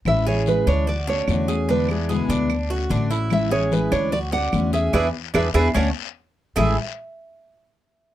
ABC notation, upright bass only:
X:1
M:4/4
L:1/8
Q:1/4=148
K:A
V:1 name="Upright bass" clef=bass
A,,,3 D,,3 E,,2- | E,,3 D,,3 A,,,2- | A,,,3 D,,3 E,,2 | E,, z E,, E,, D,, z3 |
A,,, z6 z |]